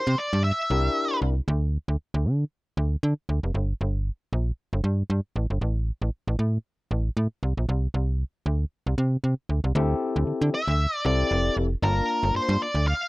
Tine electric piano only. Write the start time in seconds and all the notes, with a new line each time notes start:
0.70 D4 E4 G4 A#4
9.75 C4 E4 G4 A4
11.05 C4 E4 G4 A4
11.82 A#3 D4 F4 A5